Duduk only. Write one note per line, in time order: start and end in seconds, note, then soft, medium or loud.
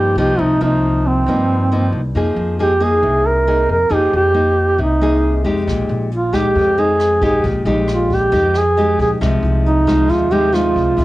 0.00 0.17 G4 medium
0.18 0.41 G4 medium
0.40 0.61 D#4 medium
0.63 1.08 D#4 medium
1.07 1.94 C4 medium
2.61 2.84 G4 medium
2.83 3.29 G#4 medium
3.27 3.70 A#4 medium
3.72 3.95 A#4 medium
3.94 4.15 G4 medium
4.16 4.77 G4 medium
4.82 5.43 D#4 medium
6.13 6.37 F4 medium
6.35 6.80 G4 medium
6.79 7.23 G#4 medium
7.25 7.44 G#4 medium
7.90 8.15 F4 medium
8.14 8.59 G4 medium
8.57 9.00 G#4 loud
9.02 9.11 G#4 medium
9.65 10.12 D#4 medium
10.10 10.33 F4 medium
10.32 10.56 G4 medium
10.54 11.05 F4 medium